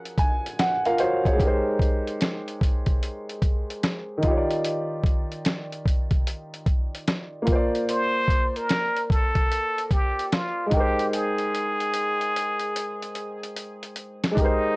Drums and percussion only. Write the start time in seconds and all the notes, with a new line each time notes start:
0.05 closed hi-hat
0.18 kick, closed hi-hat
0.46 closed hi-hat
0.59 snare, closed hi-hat
0.85 closed hi-hat
0.98 closed hi-hat
1.25 kick, closed hi-hat
1.40 kick, closed hi-hat
1.79 kick, closed hi-hat
2.07 closed hi-hat
2.21 snare, closed hi-hat
2.48 closed hi-hat
2.61 kick, closed hi-hat
2.86 kick, closed hi-hat
3.03 closed hi-hat
3.29 closed hi-hat
3.42 kick, closed hi-hat
3.70 closed hi-hat
3.83 snare, closed hi-hat
4.23 kick, closed hi-hat
4.51 closed hi-hat
4.65 closed hi-hat
5.04 kick, closed hi-hat
5.32 closed hi-hat
5.45 snare, closed hi-hat
5.72 closed hi-hat
5.86 kick, closed hi-hat
6.11 kick, closed hi-hat
6.27 closed hi-hat
6.54 closed hi-hat
6.66 kick, closed hi-hat
6.95 closed hi-hat
7.08 snare, closed hi-hat
7.47 kick, closed hi-hat
7.75 closed hi-hat
7.89 closed hi-hat
8.28 kick, closed hi-hat
8.56 closed hi-hat
8.69 snare, closed hi-hat
8.96 closed hi-hat
9.10 kick, closed hi-hat
9.35 kick, closed hi-hat
9.52 closed hi-hat
9.78 closed hi-hat
9.91 kick, closed hi-hat
10.19 closed hi-hat
10.32 snare, closed hi-hat
10.71 kick, closed hi-hat
10.99 closed hi-hat
11.13 closed hi-hat
11.38 closed hi-hat
11.55 closed hi-hat
11.80 closed hi-hat
11.94 closed hi-hat
12.21 closed hi-hat
12.36 closed hi-hat
12.59 closed hi-hat
12.76 closed hi-hat
13.02 closed hi-hat
13.15 closed hi-hat
13.43 closed hi-hat
13.56 closed hi-hat
13.83 closed hi-hat
13.96 closed hi-hat
14.24 snare, closed hi-hat
14.37 kick, closed hi-hat